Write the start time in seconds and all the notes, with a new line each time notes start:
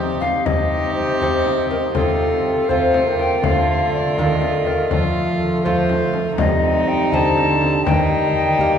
Already playing: C3 C4 D#4 G4
0.21 F5, frame drum
0.45 C3 D#4 G4 D#5, frame drum
0.94 C5
1.21 C4 D#4 G4, frame drum
1.46 frame drum
1.71 A#4, frame drum
1.95 C3 C4 F4 A4, frame drum
2.69 C4 F4 A4 C5, frame drum
2.94 frame drum
3.07 A#3
3.19 G5, frame drum
3.44 D3 A3 F4 F5, frame drum
3.93 D5
4.18 D#3 A3 F4 A4, frame drum
4.42 frame drum
4.67 A#4, frame drum
4.91 F3 A3 F4 A4, frame drum
5.63 A3 F4 A4 C5, frame drum
5.89 frame drum
6.14 frame drum
6.38 C3 G3 D#4 D#5, frame drum
6.88 G5
7.12 C3 D3 C4 G4 D#5 A5, frame drum
7.38 frame drum
7.62 frame drum
7.85 D#3 G3 D#4 G5, frame drum
8.59 A#3 D#4 G4, frame drum